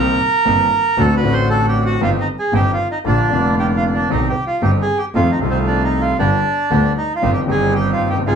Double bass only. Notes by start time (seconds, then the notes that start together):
Already playing: C2
0.46 G1
0.97 D2
1.24 A1
2.01 G1
2.53 G1
3.05 A#1
3.32 F1
4.10 C2
4.63 G1
5.14 F2
5.41 C2
6.19 G1
6.71 D2
7.23 G1
7.49 G1
8.01 F#1
8.26 G#1